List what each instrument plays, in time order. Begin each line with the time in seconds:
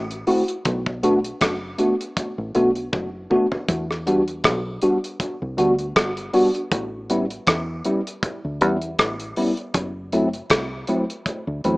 Already playing: fingered electric bass A1
0.11 closed hi-hat
0.27 tine electric piano A3 C4 E4 F#4, open hi-hat
0.48 tine electric piano E4 F#4, closed hi-hat
0.65 fingered electric bass B1, kick, closed hi-hat
0.86 kick
1.03 tine electric piano A3 B3 D4 F#4, closed hi-hat
1.24 closed hi-hat
1.41 fingered electric bass F#1, kick, cross-stick, closed hi-hat
1.78 tine electric piano A3 B3 D4 F#4, closed hi-hat
2.01 closed hi-hat
2.17 kick, closed hi-hat
2.38 fingered electric bass A1
2.55 fingered electric bass B1, tine electric piano A3 B3 D4 F#4, closed hi-hat
2.75 tine electric piano D4 F#4, closed hi-hat
2.93 fingered electric bass F#1, kick, high tom
3.30 tine electric piano A3 B3 D4 F#4, mid tom
3.52 tine electric piano D4 F#4, floor tom
3.68 fingered electric bass E2, kick, closed hi-hat
3.91 cross-stick
4.07 tine electric piano G3 B3 D4 F#4, closed hi-hat
4.28 closed hi-hat
4.44 fingered electric bass B1, kick, cross-stick, closed hi-hat
4.82 tine electric piano G3 B3 D4 F#4, closed hi-hat
5.04 closed hi-hat
5.20 kick, closed hi-hat
5.42 fingered electric bass C2
5.58 fingered electric bass D2, tine electric piano G3 B3 D4 F#4, closed hi-hat
5.79 tine electric piano D4 F#4, closed hi-hat
5.96 fingered electric bass G1, kick, cross-stick, closed hi-hat
6.17 closed hi-hat
6.33 tine electric piano G3 B3 D4 F#4, open hi-hat
6.55 tine electric piano D4 F#4, closed hi-hat
6.72 fingered electric bass A1, kick, closed hi-hat
7.10 tine electric piano G3 B3 C#4 E4, closed hi-hat
7.30 closed hi-hat
7.47 fingered electric bass E2, kick, cross-stick, closed hi-hat
7.85 tine electric piano G3 B3 C#4 E4, closed hi-hat
8.07 closed hi-hat
8.23 kick, closed hi-hat
8.45 fingered electric bass D2
8.61 fingered electric bass E2, tine electric piano G3 B3 C#4 E4, closed hi-hat
8.82 closed hi-hat
8.99 fingered electric bass A1, kick, cross-stick, closed hi-hat
9.20 closed hi-hat
9.36 tine electric piano G3 B3 C#4 E4, open hi-hat
9.57 closed hi-hat
9.74 fingered electric bass F#1, kick, closed hi-hat
10.12 tine electric piano F#3 A3 C4 E4, closed hi-hat
10.33 closed hi-hat
10.50 fingered electric bass C2, kick, cross-stick, closed hi-hat
10.87 tine electric piano F#3 A3 C4 E4, closed hi-hat
11.10 closed hi-hat
11.26 kick, closed hi-hat
11.47 fingered electric bass D2
11.64 fingered electric bass E2, tine electric piano F#3 A3 C4 E4, closed hi-hat